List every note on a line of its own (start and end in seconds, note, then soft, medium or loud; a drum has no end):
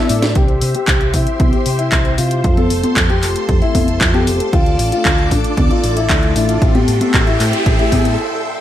0.00 0.35 D4 medium
0.00 0.34 E4 medium
0.00 0.35 A4 medium
0.09 0.33 A2 medium
0.09 0.32 E4 medium
0.09 0.32 A4 medium
0.09 0.32 D5 medium
0.09 0.32 E5 loud
0.09 open hi-hat loud
0.22 snare medium
0.22 closed hi-hat medium
0.35 0.59 C2 medium
0.35 0.53 C4 medium
0.35 0.53 E4 medium
0.35 0.53 G4 medium
0.35 2.42 G4 medium
0.35 0.70 G4 medium
0.35 0.53 C5 loud
0.35 4.49 C5 medium
0.35 2.42 E5 medium
0.35 2.42 C6 medium
0.35 kick loud
0.35 closed hi-hat medium
0.35 riser medium
0.48 closed hi-hat soft
0.61 0.73 C3 medium
0.61 open hi-hat loud
0.74 0.92 C4 medium
0.74 0.92 E4 medium
0.74 0.92 G4 medium
0.74 1.09 G4 loud
0.74 0.92 C5 loud
0.74 closed hi-hat medium
0.88 1.11 C2 medium
0.88 kick loud
0.88 clap loud
0.88 closed hi-hat medium
1.01 closed hi-hat soft
1.14 1.25 C3 medium
1.14 1.50 C4 medium
1.14 1.50 E4 medium
1.14 1.48 E4 medium
1.14 1.50 G4 medium
1.14 1.50 C5 medium
1.14 kick medium
1.14 open hi-hat loud
1.27 closed hi-hat medium
1.40 1.52 C2 loud
1.40 kick loud
1.40 closed hi-hat medium
1.40 high conga medium
1.53 1.81 C4 medium
1.53 1.81 E4 medium
1.53 1.81 G4 medium
1.53 1.76 G4 medium
1.53 1.81 C5 medium
1.53 closed hi-hat soft
1.66 1.89 C3 medium
1.66 open hi-hat loud
1.79 2.13 E4 loud
1.79 closed hi-hat medium
1.92 2.15 C2 medium
1.92 2.15 C4 medium
1.92 2.15 E4 medium
1.92 2.15 G4 medium
1.92 2.15 C5 loud
1.92 kick loud
1.92 clap loud
1.92 closed hi-hat medium
2.05 closed hi-hat soft
2.18 2.41 C3 medium
2.18 2.41 C4 loud
2.18 2.41 E4 medium
2.18 2.52 F4 medium
2.18 2.41 G4 medium
2.18 2.41 C5 loud
2.18 open hi-hat loud
2.31 closed hi-hat medium
2.44 2.67 F2 medium
2.44 2.62 A3 medium
2.44 2.62 C4 medium
2.44 2.62 F4 medium
2.44 2.62 A4 loud
2.44 8.61 A4 medium
2.44 6.58 A5 medium
2.44 4.51 C6 loud
2.44 kick loud
2.44 closed hi-hat medium
2.57 3.03 A4 medium
2.57 closed hi-hat soft
2.57 high conga medium
2.70 2.82 F1 loud
2.70 open hi-hat loud
2.83 3.01 A3 medium
2.83 3.01 C4 medium
2.83 3.01 F4 medium
2.83 3.01 A4 loud
2.83 closed hi-hat medium
2.83 high conga medium
2.96 3.20 F2 medium
2.96 kick loud
2.96 clap loud
2.96 closed hi-hat medium
3.09 3.55 G4 medium
3.09 closed hi-hat soft
3.23 3.34 F1 medium
3.23 3.59 A3 medium
3.23 3.59 C4 medium
3.23 3.59 F4 medium
3.23 3.59 A4 medium
3.23 clap soft
3.23 open hi-hat loud
3.36 closed hi-hat medium
3.49 3.60 F2 loud
3.49 kick loud
3.49 closed hi-hat medium
3.61 3.89 A3 medium
3.61 3.89 C4 medium
3.61 4.07 E4 loud
3.61 3.89 F4 medium
3.61 3.89 A4 medium
3.61 closed hi-hat soft
3.75 3.98 F1 medium
3.75 kick medium
3.75 open hi-hat loud
3.75 high conga medium
3.88 closed hi-hat medium
4.01 4.24 F2 loud
4.01 4.24 A3 medium
4.01 4.24 C4 medium
4.01 4.24 F4 medium
4.01 4.24 A4 loud
4.01 kick loud
4.01 clap loud
4.01 closed hi-hat medium
4.14 4.48 G4 loud
4.14 closed hi-hat soft
4.14 high conga medium
4.27 4.39 F1 loud
4.27 4.50 A3 loud
4.27 4.50 C4 medium
4.27 4.50 F4 medium
4.27 4.50 A4 loud
4.27 open hi-hat loud
4.40 closed hi-hat medium
4.53 4.76 D2 medium
4.53 4.70 A3 medium
4.53 4.70 D4 medium
4.53 4.70 F4 medium
4.53 4.87 F4 loud
4.53 4.70 A4 medium
4.53 6.60 D5 medium
4.53 6.60 D6 medium
4.53 kick loud
4.53 closed hi-hat medium
4.66 closed hi-hat soft
4.79 4.91 A1 loud
4.79 open hi-hat loud
4.92 5.09 A3 medium
4.92 5.09 D4 medium
4.92 5.09 F4 medium
4.92 5.26 F4 medium
4.92 5.09 A4 loud
4.92 closed hi-hat medium
5.05 5.28 D2 medium
5.05 kick loud
5.05 clap loud
5.05 closed hi-hat medium
5.18 closed hi-hat soft
5.31 5.43 A1 medium
5.31 5.67 A3 medium
5.31 5.67 D4 medium
5.31 5.65 D4 medium
5.31 5.67 F4 medium
5.31 5.67 A4 medium
5.31 kick medium
5.31 open hi-hat loud
5.44 closed hi-hat medium
5.57 5.69 D2 loud
5.57 kick loud
5.57 closed hi-hat soft
5.57 high conga medium
5.70 5.98 A3 medium
5.70 5.98 D4 medium
5.70 5.98 F4 medium
5.70 5.93 F4 medium
5.70 5.98 A4 loud
5.70 closed hi-hat soft
5.84 6.07 A1 medium
5.84 open hi-hat loud
5.97 6.31 E4 loud
5.97 closed hi-hat medium
6.09 6.33 D2 medium
6.09 6.32 A3 medium
6.09 6.32 D4 medium
6.09 6.32 F4 medium
6.09 6.32 A4 loud
6.09 kick loud
6.09 clap loud
6.09 closed hi-hat medium
6.23 closed hi-hat soft
6.35 6.59 A1 loud
6.35 6.58 A3 medium
6.35 6.58 D4 medium
6.35 6.70 E4 medium
6.35 6.58 F4 medium
6.35 6.58 A4 loud
6.35 open hi-hat loud
6.49 closed hi-hat medium
6.62 6.85 A1 medium
6.62 6.79 A3 medium
6.62 6.79 C4 medium
6.62 6.79 E4 medium
6.62 6.79 G4 medium
6.62 8.61 E5 medium
6.62 8.61 G5 medium
6.62 8.61 C6 medium
6.62 kick loud
6.62 closed hi-hat medium
6.62 noise sweep medium
6.75 7.20 G4 medium
6.75 closed hi-hat soft
6.75 high conga medium
6.88 6.99 A2 loud
6.88 open hi-hat loud
7.01 7.18 A3 medium
7.01 7.18 C4 medium
7.01 7.18 E4 medium
7.01 7.18 G4 loud
7.01 closed hi-hat medium
7.01 high conga medium
7.14 7.37 A1 medium
7.14 kick loud
7.14 clap loud
7.14 closed hi-hat medium
7.27 7.72 E4 medium
7.27 closed hi-hat soft
7.40 7.52 A2 medium
7.40 7.76 A3 medium
7.40 7.76 C4 medium
7.40 7.76 E4 medium
7.40 7.76 G4 medium
7.40 clap soft
7.40 open hi-hat loud
7.53 closed hi-hat medium
7.66 7.78 A1 loud
7.66 kick loud
7.66 closed hi-hat medium
7.79 8.07 A3 medium
7.79 8.07 C4 medium
7.79 8.18 E4 loud
7.79 8.07 E4 medium
7.79 8.07 G4 medium
7.79 closed hi-hat soft
7.92 8.15 A2 loud
7.92 kick medium
7.92 open hi-hat loud
7.92 high conga medium
8.05 closed hi-hat medium